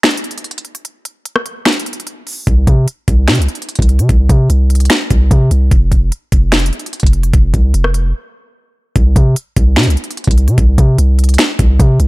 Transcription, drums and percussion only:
0.03 finger snap, snare, closed hi-hat
0.11 closed hi-hat
0.17 closed hi-hat
0.24 closed hi-hat
0.31 closed hi-hat
0.38 closed hi-hat
0.44 closed hi-hat
0.51 closed hi-hat
0.58 closed hi-hat
0.65 closed hi-hat
0.75 closed hi-hat
0.85 closed hi-hat
1.05 closed hi-hat
1.25 closed hi-hat
1.36 cross-stick
1.46 closed hi-hat
1.65 finger snap, cross-stick, snare, closed hi-hat
1.73 closed hi-hat
1.80 closed hi-hat
1.86 closed hi-hat
1.93 closed hi-hat
2.00 closed hi-hat
2.07 closed hi-hat
2.27 open hi-hat
2.47 kick, closed hi-hat
2.67 kick, closed hi-hat
2.88 closed hi-hat
3.08 kick, closed hi-hat
3.28 finger snap, snare, closed hi-hat
3.35 closed hi-hat
3.42 closed hi-hat
3.48 closed hi-hat
3.55 closed hi-hat
3.62 closed hi-hat
3.69 closed hi-hat
3.75 kick, closed hi-hat
3.82 closed hi-hat
3.89 closed hi-hat
3.99 closed hi-hat
4.09 kick, closed hi-hat
4.29 kick, closed hi-hat
4.50 closed hi-hat
4.70 closed hi-hat
4.75 closed hi-hat
4.80 closed hi-hat
4.85 closed hi-hat
4.90 finger snap, snare, closed hi-hat
5.10 kick, closed hi-hat
5.31 kick, closed hi-hat
5.51 closed hi-hat
5.71 kick, closed hi-hat
5.92 kick, closed hi-hat
6.12 closed hi-hat
6.32 kick, closed hi-hat
6.52 finger snap, snare, closed hi-hat
6.59 closed hi-hat
6.66 closed hi-hat
6.73 closed hi-hat
6.79 closed hi-hat
6.86 closed hi-hat
6.93 closed hi-hat
7.00 kick, closed hi-hat
7.07 closed hi-hat
7.13 closed hi-hat
7.23 closed hi-hat
7.33 kick, closed hi-hat
7.54 kick, closed hi-hat
7.74 closed hi-hat
7.84 cross-stick
7.94 closed hi-hat
8.96 kick, closed hi-hat
9.16 kick, closed hi-hat
9.36 closed hi-hat
9.56 kick, closed hi-hat
9.76 finger snap, snare, closed hi-hat
9.84 closed hi-hat
9.90 closed hi-hat
9.97 closed hi-hat
10.04 closed hi-hat
10.11 closed hi-hat
10.17 closed hi-hat
10.24 kick, closed hi-hat
10.31 closed hi-hat
10.38 closed hi-hat
10.48 closed hi-hat
10.58 kick, closed hi-hat
10.78 kick, closed hi-hat
10.98 closed hi-hat
11.19 closed hi-hat
11.24 closed hi-hat
11.29 closed hi-hat
11.34 closed hi-hat
11.38 finger snap, snare, closed hi-hat
11.59 kick, closed hi-hat
11.80 kick, closed hi-hat
12.00 closed hi-hat

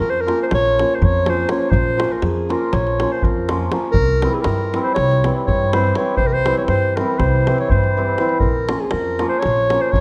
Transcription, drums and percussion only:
0.28 davul high
0.51 davul high
0.65 davul high
0.79 davul high
1.02 davul low
1.26 davul high
1.49 davul high
1.72 davul low
2.00 davul high
2.12 davul high
2.22 davul high
2.50 davul high
2.73 davul high
2.87 davul high
3.00 davul high
3.23 davul low
3.49 davul high
3.72 davul high
3.94 davul low
4.22 davul high
4.34 davul high
4.44 davul high
4.74 davul high
4.96 davul high
5.11 davul high
5.24 davul high
5.48 davul low
5.73 davul high
5.95 davul high
6.17 davul low
6.46 davul high
6.57 davul high
6.68 davul high
6.97 davul high
7.20 davul high, davul low
7.47 davul high
7.58 davul high
7.70 davul low
7.84 davul high
8.18 davul high
8.29 davul high
8.40 davul low
8.69 davul high
8.80 davul high
8.91 davul high
9.19 davul high
9.42 davul high
9.57 davul high
9.70 davul high
9.93 davul low

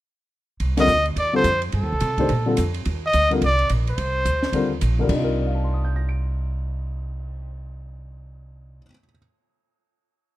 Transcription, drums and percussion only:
0.60 ride
0.77 snare, ride
0.88 hi-hat pedal
1.06 ride
1.17 ride
1.44 hi-hat pedal, ride
1.62 ride
1.72 ride
2.00 hi-hat pedal, ride
2.18 kick, ride
2.29 ride
2.57 hi-hat pedal, ride
2.74 ride
2.85 ride
3.13 hi-hat pedal, ride
3.31 ride
3.42 ride
3.59 ride
3.69 hi-hat pedal, ride
3.87 ride
3.98 ride
4.25 hi-hat pedal, ride
4.43 snare
4.53 ride
4.81 hi-hat pedal, ride
5.09 kick, crash
5.27 cymbal swell

